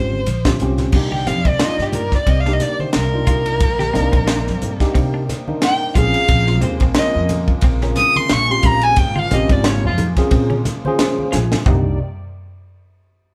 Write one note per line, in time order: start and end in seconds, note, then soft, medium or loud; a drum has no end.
0.00 0.23 G#1 medium
0.00 0.21 C4 medium
0.00 0.22 C#4 medium
0.00 0.22 F4 medium
0.00 0.22 G4 medium
0.00 0.61 C5 medium
0.12 high conga soft
0.26 0.57 A#1 medium
0.26 hi-hat pedal medium
0.26 ride medium
0.26 high conga medium
0.45 0.56 C4 medium
0.45 0.56 C#4 medium
0.45 0.56 F4 medium
0.45 0.56 G4 medium
0.45 kick medium
0.45 snare loud
0.45 high conga medium
0.60 0.90 C2 medium
0.60 0.94 C4 medium
0.60 0.95 C#4 medium
0.60 0.95 F4 medium
0.60 0.95 G4 medium
0.60 hi-hat pedal medium
0.60 ride medium
0.60 low conga medium
0.78 snare soft
0.78 ride medium
0.78 low conga medium
0.92 1.28 C2 medium
0.92 5.93 C3 medium
0.92 5.93 D#3 medium
0.92 5.93 G3 medium
0.92 11.63 A#3 medium
0.92 1.40 A#3 medium
0.92 1.40 D4 medium
0.92 3.59 D5 medium
0.92 kick loud
0.92 crash loud
0.96 1.40 D#4 medium
0.96 1.40 G4 medium
1.12 1.23 G4 medium
1.12 1.29 G5 medium
1.12 high conga medium
1.26 1.44 F2 medium
1.26 1.41 C4 medium
1.26 1.50 F5 medium
1.26 snare soft
1.26 hi-hat pedal medium
1.26 ride medium
1.26 low conga medium
1.45 1.59 C2 medium
1.45 1.58 C4 medium
1.45 1.66 D5 medium
1.45 kick medium
1.45 ride medium
1.59 2.17 A#3 medium
1.59 1.86 D4 medium
1.59 2.17 D4 medium
1.59 2.17 D#4 medium
1.59 2.18 F4 medium
1.59 snare loud
1.59 ride medium
1.64 1.84 D#5 medium
1.78 2.08 G2 medium
1.78 1.97 G4 medium
1.78 snare soft
1.93 2.17 A#4 medium
1.93 hi-hat pedal medium
1.93 ride medium
1.93 low conga medium
2.12 2.31 D5 medium
2.12 kick medium
2.12 snare soft
2.26 2.57 C2 medium
2.26 2.42 C4 medium
2.26 2.42 D#5 medium
2.26 kick medium
2.26 ride medium
2.40 2.54 F5 medium
2.45 2.89 A#3 medium
2.45 2.72 D4 medium
2.45 2.90 D4 medium
2.45 2.90 D#4 medium
2.45 2.90 G4 medium
2.45 snare soft
2.53 2.63 D#5 medium
2.60 2.82 D5 medium
2.60 snare soft
2.60 hi-hat pedal medium
2.60 ride medium
2.60 low conga medium
2.79 2.95 C5 medium
2.79 high conga medium
2.93 3.24 C2 medium
2.93 4.93 A#4 medium
2.93 snare medium
2.93 ride medium
3.14 3.67 A#3 medium
3.14 3.67 D4 medium
3.14 3.67 D#4 medium
3.14 3.67 F4 medium
3.27 3.61 C2 medium
3.27 3.53 F4 medium
3.27 kick medium
3.27 hi-hat pedal medium
3.27 ride medium
3.27 low conga medium
3.46 ride medium
3.60 3.91 A#1 loud
3.60 5.93 C4 medium
3.60 kick loud
3.60 ride medium
3.79 3.91 G4 medium
3.79 snare soft
3.79 high conga medium
3.93 4.12 C2 medium
3.93 4.51 A#3 loud
3.93 4.09 C4 medium
3.93 4.51 D4 medium
3.93 4.51 D#4 medium
3.93 4.51 A#4 loud
3.93 snare soft
3.93 hi-hat pedal medium
3.93 ride medium
3.93 low conga medium
4.12 4.50 A#1 medium
4.12 4.24 C4 medium
4.12 kick medium
4.12 ride medium
4.27 4.53 D4 medium
4.27 snare loud
4.27 ride medium
4.47 4.78 G2 medium
4.47 snare soft
4.62 hi-hat pedal medium
4.62 ride medium
4.62 low conga medium
4.80 5.23 A#3 medium
4.80 5.23 D4 medium
4.80 5.24 D#4 medium
4.80 5.24 G4 loud
4.80 muted upright bass stroke soft
4.80 kick medium
4.80 snare soft
4.80 ride medium
4.95 5.25 C3 medium
4.95 5.09 C4 medium
4.95 kick medium
4.95 ride medium
5.14 5.40 D4 medium
5.29 snare soft
5.29 hi-hat pedal medium
5.29 ride medium
5.29 low conga medium
5.48 5.96 A#3 medium
5.48 5.97 D4 medium
5.48 5.97 D#4 medium
5.48 5.97 A#4 medium
5.48 high conga medium
5.62 5.94 G5 medium
5.62 snare loud
5.62 ride medium
5.94 6.13 A#1 medium
5.94 11.61 C#3 medium
5.94 11.62 F3 medium
5.94 11.62 G#3 medium
5.94 6.79 C4 medium
5.94 6.79 C#4 medium
5.94 6.21 F4 medium
5.94 6.79 F4 medium
5.94 6.79 G#4 medium
5.94 6.60 F5 loud
5.94 kick medium
5.94 hi-hat pedal medium
5.94 ride medium
5.94 low conga medium
6.14 ride medium
6.28 6.63 A#1 loud
6.28 kick loud
6.28 ride medium
6.47 6.60 F4 medium
6.47 snare soft
6.61 6.80 D#2 medium
6.61 6.78 C4 medium
6.61 6.81 C5 medium
6.61 hi-hat pedal medium
6.61 ride medium
6.61 low conga medium
6.80 6.95 A#1 medium
6.80 6.94 C4 medium
6.80 kick medium
6.80 ride medium
6.95 7.54 C4 medium
6.95 7.23 C#4 medium
6.95 7.18 D#5 medium
6.95 snare loud
6.95 ride medium
6.99 7.54 C#4 medium
6.99 7.54 F4 medium
6.99 7.54 A#4 medium
7.15 7.45 F2 medium
7.29 hi-hat pedal medium
7.29 ride medium
7.29 low conga medium
7.48 kick medium
7.61 7.93 A#1 medium
7.61 7.78 C4 medium
7.61 kick medium
7.61 ride medium
7.81 8.25 C4 medium
7.81 8.08 C#4 medium
7.81 8.26 C#4 medium
7.81 8.26 F4 medium
7.81 8.26 A#4 medium
7.81 snare soft
7.96 8.18 D#6 loud
7.96 snare soft
7.96 hi-hat pedal medium
7.96 ride medium
7.96 low conga medium
8.16 8.34 C6 medium
8.16 high conga medium
8.29 8.60 A#1 medium
8.29 8.53 C#6 loud
8.29 snare loud
8.29 ride medium
8.50 9.03 C4 medium
8.50 9.04 C#4 medium
8.50 9.04 F4 medium
8.50 9.04 G4 medium
8.50 8.68 C6 medium
8.63 8.97 A#1 medium
8.63 8.90 F4 medium
8.63 kick medium
8.63 hi-hat pedal medium
8.63 ride medium
8.63 low conga medium
8.67 8.85 A#5 loud
8.81 9.00 G#5 medium
8.81 ride medium
8.96 9.27 G#1 loud
8.96 9.20 G5 medium
8.96 kick loud
8.96 ride medium
9.16 9.27 F4 medium
9.16 9.35 F5 medium
9.16 high conga medium
9.31 9.48 A#1 medium
9.31 9.46 C4 medium
9.31 9.89 C4 medium
9.31 9.89 C#4 medium
9.31 9.89 F4 medium
9.31 9.89 G4 medium
9.31 9.54 D#5 medium
9.31 snare soft
9.31 hi-hat pedal medium
9.31 ride medium
9.31 high conga medium
9.31 low conga medium
9.49 9.86 G#1 medium
9.49 9.62 C4 medium
9.49 9.70 D5 medium
9.49 kick medium
9.49 ride medium
9.64 9.91 C#4 medium
9.64 snare loud
9.64 ride medium
9.69 9.86 C#5 medium
9.85 10.14 F2 medium
9.85 9.94 F4 medium
9.98 hi-hat pedal medium
9.98 ride medium
9.98 low conga medium
10.17 10.60 C4 medium
10.17 10.60 C#4 medium
10.17 10.61 F4 medium
10.17 10.61 G#4 loud
10.17 muted upright bass stroke soft
10.17 kick medium
10.17 snare soft
10.17 ride medium
10.31 10.61 A#2 medium
10.31 10.46 C4 medium
10.31 kick medium
10.31 ride medium
10.50 10.76 C#4 medium
10.50 high conga medium
10.65 snare soft
10.65 hi-hat pedal medium
10.65 ride medium
10.65 low conga medium
10.85 11.39 C#4 medium
10.85 11.39 F4 medium
10.85 11.40 G#4 loud
10.85 11.39 C5 medium
10.85 high conga medium
10.99 11.31 C#5 medium
10.99 snare loud
10.99 ride medium
10.99 high conga medium
11.19 high conga medium
11.32 11.50 A#1 medium
11.32 11.58 F4 medium
11.32 11.64 G#5 medium
11.32 snare medium
11.32 hi-hat pedal medium
11.32 low conga medium
11.52 snare medium
11.52 low conga medium
11.66 11.97 C2 medium
11.66 11.99 C3 medium
11.66 11.99 D#3 medium
11.66 11.99 G3 medium
11.66 11.98 A#3 medium
11.66 11.99 A#3 medium
11.66 11.86 C4 medium
11.66 11.98 D4 medium
11.66 11.98 D#4 medium
11.66 11.98 G4 medium
11.66 11.99 D5 medium
11.66 kick loud
11.66 floor tom loud
11.66 high conga medium